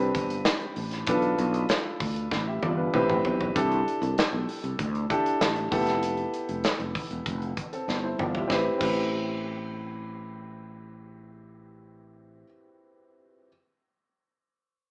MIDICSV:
0, 0, Header, 1, 4, 480
1, 0, Start_track
1, 0, Key_signature, 0, "minor"
1, 0, Tempo, 618557
1, 837, Time_signature, 4, 2, 24, 8
1, 11568, End_track
2, 0, Start_track
2, 0, Title_t, "Grand piano"
2, 0, Program_c, 0, 0
2, 0, Control_c, 0, 64, 127
2, 0, Note_on_c, 0, 60, 80
2, 0, Note_on_c, 0, 62, 75
2, 0, Note_on_c, 0, 67, 75
2, 0, Note_on_c, 0, 71, 94
2, 583, Note_off_c, 0, 60, 0
2, 584, Note_off_c, 0, 62, 0
2, 585, Note_off_c, 0, 71, 0
2, 586, Note_off_c, 0, 67, 0
2, 837, Note_on_c, 0, 62, 87
2, 841, Note_on_c, 0, 65, 82
2, 844, Note_on_c, 0, 69, 80
2, 845, Note_on_c, 0, 71, 96
2, 847, Control_c, 0, 64, 0
2, 995, Control_c, 0, 64, 127
2, 1545, Note_off_c, 0, 62, 0
2, 1547, Note_off_c, 0, 65, 0
2, 1549, Note_off_c, 0, 69, 0
2, 1549, Note_off_c, 0, 71, 0
2, 1920, Note_on_c, 0, 76, 70
2, 1927, Note_on_c, 0, 67, 54
2, 2033, Note_off_c, 0, 76, 0
2, 2037, Note_off_c, 0, 67, 0
2, 2040, Note_on_c, 0, 74, 73
2, 2047, Note_on_c, 0, 65, 63
2, 2153, Note_off_c, 0, 74, 0
2, 2153, Note_on_c, 0, 71, 65
2, 2157, Note_off_c, 0, 65, 0
2, 2159, Note_on_c, 0, 62, 55
2, 2275, Note_off_c, 0, 71, 0
2, 2278, Note_on_c, 0, 60, 91
2, 2282, Note_on_c, 0, 64, 82
2, 2285, Note_on_c, 0, 67, 86
2, 2287, Note_on_c, 0, 71, 99
2, 2289, Control_c, 0, 64, 0
2, 2386, Note_off_c, 0, 62, 0
2, 2402, Control_c, 0, 64, 127
2, 2662, Note_off_c, 0, 60, 0
2, 2664, Note_off_c, 0, 64, 0
2, 2665, Note_off_c, 0, 67, 0
2, 2666, Note_off_c, 0, 71, 0
2, 2757, Note_on_c, 0, 62, 83
2, 2761, Note_on_c, 0, 64, 76
2, 2763, Note_on_c, 0, 67, 78
2, 2766, Note_on_c, 0, 69, 97
2, 2767, Control_c, 0, 64, 0
2, 2892, Control_c, 0, 64, 127
2, 3465, Note_off_c, 0, 62, 0
2, 3467, Note_off_c, 0, 64, 0
2, 3468, Note_off_c, 0, 67, 0
2, 3469, Note_off_c, 0, 69, 0
2, 3957, Note_on_c, 0, 62, 86
2, 3957, Note_on_c, 0, 64, 76
2, 3964, Note_on_c, 0, 67, 80
2, 3967, Note_on_c, 0, 69, 91
2, 4424, Note_off_c, 0, 64, 0
2, 4427, Note_off_c, 0, 67, 0
2, 4431, Note_off_c, 0, 69, 0
2, 4433, Note_on_c, 0, 59, 85
2, 4436, Note_on_c, 0, 64, 79
2, 4437, Note_off_c, 0, 62, 0
2, 4439, Note_on_c, 0, 67, 78
2, 4443, Note_on_c, 0, 69, 98
2, 4446, Control_c, 0, 64, 0
2, 4566, Control_c, 0, 64, 127
2, 5203, Note_off_c, 0, 59, 0
2, 5204, Note_off_c, 0, 64, 0
2, 5205, Note_off_c, 0, 67, 0
2, 5207, Note_off_c, 0, 69, 0
2, 5996, Note_on_c, 0, 69, 64
2, 6003, Note_on_c, 0, 60, 53
2, 6224, Note_off_c, 0, 69, 0
2, 6227, Note_off_c, 0, 60, 0
2, 6235, Note_on_c, 0, 72, 65
2, 6239, Note_on_c, 0, 64, 54
2, 6349, Note_off_c, 0, 72, 0
2, 6351, Note_off_c, 0, 64, 0
2, 6359, Note_on_c, 0, 74, 66
2, 6361, Note_on_c, 0, 65, 58
2, 6472, Note_off_c, 0, 65, 0
2, 6472, Note_off_c, 0, 74, 0
2, 6481, Note_on_c, 0, 76, 64
2, 6483, Note_on_c, 0, 67, 52
2, 6577, Note_on_c, 0, 60, 80
2, 6588, Note_on_c, 0, 64, 73
2, 6592, Note_off_c, 0, 67, 0
2, 6604, Control_c, 0, 64, 0
2, 6604, Note_on_c, 0, 67, 70
2, 6617, Note_on_c, 0, 71, 86
2, 6706, Note_off_c, 0, 76, 0
2, 6720, Note_off_c, 0, 60, 0
2, 6722, Control_c, 0, 64, 127
2, 6725, Note_off_c, 0, 64, 0
2, 6734, Note_off_c, 0, 67, 0
2, 6741, Note_off_c, 0, 71, 0
2, 6814, Note_on_c, 0, 60, 75
2, 6823, Note_on_c, 0, 64, 70
2, 6838, Note_on_c, 0, 67, 64
2, 6850, Note_on_c, 0, 71, 81
2, 9637, Note_off_c, 0, 60, 0
2, 9642, Note_off_c, 0, 64, 0
2, 9649, Note_off_c, 0, 67, 0
2, 9655, Note_off_c, 0, 71, 0
2, 10466, Control_c, 0, 64, 0
2, 11568, End_track
3, 0, Start_track
3, 0, Title_t, "Fretless electric bass"
3, 0, Program_c, 1, 35
3, 115, Note_on_c, 1, 31, 87
3, 320, Note_off_c, 1, 31, 0
3, 594, Note_on_c, 1, 33, 90
3, 799, Note_off_c, 1, 33, 0
3, 833, Note_on_c, 1, 35, 96
3, 1039, Note_off_c, 1, 35, 0
3, 1074, Note_on_c, 1, 35, 104
3, 1279, Note_off_c, 1, 35, 0
3, 1555, Note_on_c, 1, 38, 84
3, 1760, Note_off_c, 1, 38, 0
3, 1797, Note_on_c, 1, 33, 104
3, 2001, Note_off_c, 1, 33, 0
3, 2038, Note_on_c, 1, 31, 95
3, 2242, Note_off_c, 1, 31, 0
3, 2279, Note_on_c, 1, 33, 95
3, 2482, Note_off_c, 1, 33, 0
3, 2516, Note_on_c, 1, 35, 83
3, 2720, Note_off_c, 1, 35, 0
3, 2760, Note_on_c, 1, 36, 108
3, 2963, Note_off_c, 1, 36, 0
3, 3117, Note_on_c, 1, 36, 99
3, 3219, Note_off_c, 1, 36, 0
3, 3358, Note_on_c, 1, 35, 86
3, 3460, Note_off_c, 1, 35, 0
3, 3599, Note_on_c, 1, 36, 83
3, 3700, Note_off_c, 1, 36, 0
3, 3718, Note_on_c, 1, 38, 105
3, 3921, Note_off_c, 1, 38, 0
3, 4197, Note_on_c, 1, 33, 99
3, 4400, Note_off_c, 1, 33, 0
3, 4437, Note_on_c, 1, 29, 90
3, 4843, Note_off_c, 1, 29, 0
3, 5036, Note_on_c, 1, 29, 87
3, 5138, Note_off_c, 1, 29, 0
3, 5272, Note_on_c, 1, 29, 90
3, 5376, Note_off_c, 1, 29, 0
3, 5516, Note_on_c, 1, 28, 91
3, 5617, Note_off_c, 1, 28, 0
3, 5634, Note_on_c, 1, 29, 93
3, 5838, Note_off_c, 1, 29, 0
3, 6115, Note_on_c, 1, 31, 80
3, 6318, Note_off_c, 1, 31, 0
3, 6353, Note_on_c, 1, 31, 81
3, 6558, Note_off_c, 1, 31, 0
3, 6597, Note_on_c, 1, 33, 90
3, 6730, Note_off_c, 1, 33, 0
3, 6835, Note_on_c, 1, 33, 98
3, 9647, Note_off_c, 1, 33, 0
3, 11568, End_track
4, 0, Start_track
4, 0, Title_t, "Drums"
4, 114, Note_on_c, 9, 36, 86
4, 114, Note_on_c, 9, 42, 78
4, 192, Note_off_c, 9, 36, 0
4, 192, Note_off_c, 9, 42, 0
4, 234, Note_on_c, 9, 42, 56
4, 312, Note_off_c, 9, 42, 0
4, 350, Note_on_c, 9, 38, 116
4, 351, Note_on_c, 9, 42, 101
4, 428, Note_off_c, 9, 38, 0
4, 429, Note_off_c, 9, 42, 0
4, 466, Note_on_c, 9, 42, 37
4, 543, Note_off_c, 9, 42, 0
4, 590, Note_on_c, 9, 46, 67
4, 668, Note_off_c, 9, 46, 0
4, 708, Note_on_c, 9, 42, 63
4, 715, Note_on_c, 9, 38, 32
4, 785, Note_off_c, 9, 42, 0
4, 792, Note_off_c, 9, 38, 0
4, 827, Note_on_c, 9, 42, 92
4, 833, Note_on_c, 9, 36, 101
4, 905, Note_off_c, 9, 42, 0
4, 910, Note_off_c, 9, 36, 0
4, 947, Note_on_c, 9, 42, 34
4, 1025, Note_off_c, 9, 42, 0
4, 1074, Note_on_c, 9, 42, 66
4, 1152, Note_off_c, 9, 42, 0
4, 1195, Note_on_c, 9, 42, 53
4, 1272, Note_off_c, 9, 42, 0
4, 1311, Note_on_c, 9, 42, 72
4, 1318, Note_on_c, 9, 38, 115
4, 1388, Note_off_c, 9, 42, 0
4, 1395, Note_off_c, 9, 38, 0
4, 1555, Note_on_c, 9, 36, 93
4, 1555, Note_on_c, 9, 46, 76
4, 1632, Note_off_c, 9, 36, 0
4, 1632, Note_off_c, 9, 46, 0
4, 1677, Note_on_c, 9, 42, 54
4, 1754, Note_off_c, 9, 42, 0
4, 1796, Note_on_c, 9, 36, 90
4, 1801, Note_on_c, 9, 38, 60
4, 1873, Note_off_c, 9, 36, 0
4, 1879, Note_off_c, 9, 38, 0
4, 2038, Note_on_c, 9, 48, 77
4, 2115, Note_off_c, 9, 48, 0
4, 2279, Note_on_c, 9, 47, 93
4, 2357, Note_off_c, 9, 47, 0
4, 2402, Note_on_c, 9, 45, 91
4, 2479, Note_off_c, 9, 45, 0
4, 2521, Note_on_c, 9, 43, 97
4, 2598, Note_off_c, 9, 43, 0
4, 2643, Note_on_c, 9, 43, 93
4, 2721, Note_off_c, 9, 43, 0
4, 2762, Note_on_c, 9, 36, 102
4, 2765, Note_on_c, 9, 42, 87
4, 2839, Note_off_c, 9, 36, 0
4, 2843, Note_off_c, 9, 42, 0
4, 2882, Note_on_c, 9, 42, 36
4, 2960, Note_off_c, 9, 42, 0
4, 3010, Note_on_c, 9, 42, 67
4, 3088, Note_off_c, 9, 42, 0
4, 3126, Note_on_c, 9, 42, 52
4, 3203, Note_off_c, 9, 42, 0
4, 3243, Note_on_c, 9, 42, 72
4, 3250, Note_on_c, 9, 38, 112
4, 3321, Note_off_c, 9, 42, 0
4, 3328, Note_off_c, 9, 38, 0
4, 3482, Note_on_c, 9, 46, 68
4, 3560, Note_off_c, 9, 46, 0
4, 3601, Note_on_c, 9, 42, 50
4, 3679, Note_off_c, 9, 42, 0
4, 3717, Note_on_c, 9, 36, 84
4, 3719, Note_on_c, 9, 42, 82
4, 3795, Note_off_c, 9, 36, 0
4, 3797, Note_off_c, 9, 42, 0
4, 3841, Note_on_c, 9, 42, 36
4, 3919, Note_off_c, 9, 42, 0
4, 3959, Note_on_c, 9, 36, 87
4, 3961, Note_on_c, 9, 42, 76
4, 4037, Note_off_c, 9, 36, 0
4, 4038, Note_off_c, 9, 42, 0
4, 4082, Note_on_c, 9, 42, 57
4, 4160, Note_off_c, 9, 42, 0
4, 4200, Note_on_c, 9, 38, 121
4, 4201, Note_on_c, 9, 42, 90
4, 4278, Note_off_c, 9, 38, 0
4, 4278, Note_off_c, 9, 42, 0
4, 4315, Note_on_c, 9, 42, 38
4, 4393, Note_off_c, 9, 42, 0
4, 4438, Note_on_c, 9, 36, 100
4, 4438, Note_on_c, 9, 46, 67
4, 4515, Note_off_c, 9, 36, 0
4, 4516, Note_off_c, 9, 46, 0
4, 4554, Note_on_c, 9, 42, 57
4, 4561, Note_on_c, 9, 38, 32
4, 4631, Note_off_c, 9, 42, 0
4, 4638, Note_off_c, 9, 38, 0
4, 4677, Note_on_c, 9, 42, 85
4, 4755, Note_off_c, 9, 42, 0
4, 4791, Note_on_c, 9, 42, 34
4, 4869, Note_off_c, 9, 42, 0
4, 4917, Note_on_c, 9, 42, 65
4, 4994, Note_off_c, 9, 42, 0
4, 5035, Note_on_c, 9, 42, 51
4, 5112, Note_off_c, 9, 42, 0
4, 5151, Note_on_c, 9, 42, 67
4, 5158, Note_on_c, 9, 38, 114
4, 5229, Note_off_c, 9, 42, 0
4, 5236, Note_off_c, 9, 38, 0
4, 5274, Note_on_c, 9, 42, 35
4, 5352, Note_off_c, 9, 42, 0
4, 5394, Note_on_c, 9, 36, 90
4, 5397, Note_on_c, 9, 46, 70
4, 5472, Note_off_c, 9, 36, 0
4, 5475, Note_off_c, 9, 46, 0
4, 5515, Note_on_c, 9, 42, 51
4, 5593, Note_off_c, 9, 42, 0
4, 5634, Note_on_c, 9, 36, 81
4, 5634, Note_on_c, 9, 42, 78
4, 5711, Note_off_c, 9, 36, 0
4, 5711, Note_off_c, 9, 42, 0
4, 5757, Note_on_c, 9, 42, 35
4, 5835, Note_off_c, 9, 42, 0
4, 5875, Note_on_c, 9, 42, 68
4, 5876, Note_on_c, 9, 36, 83
4, 5952, Note_off_c, 9, 42, 0
4, 5953, Note_off_c, 9, 36, 0
4, 5998, Note_on_c, 9, 42, 53
4, 6076, Note_off_c, 9, 42, 0
4, 6121, Note_on_c, 9, 38, 57
4, 6199, Note_off_c, 9, 38, 0
4, 6358, Note_on_c, 9, 45, 85
4, 6436, Note_off_c, 9, 45, 0
4, 6477, Note_on_c, 9, 43, 90
4, 6555, Note_off_c, 9, 43, 0
4, 6596, Note_on_c, 9, 36, 96
4, 6600, Note_on_c, 9, 38, 76
4, 6673, Note_off_c, 9, 36, 0
4, 6678, Note_off_c, 9, 38, 0
4, 6833, Note_on_c, 9, 49, 89
4, 6835, Note_on_c, 9, 36, 100
4, 6911, Note_off_c, 9, 49, 0
4, 6912, Note_off_c, 9, 36, 0
4, 11568, End_track
0, 0, End_of_file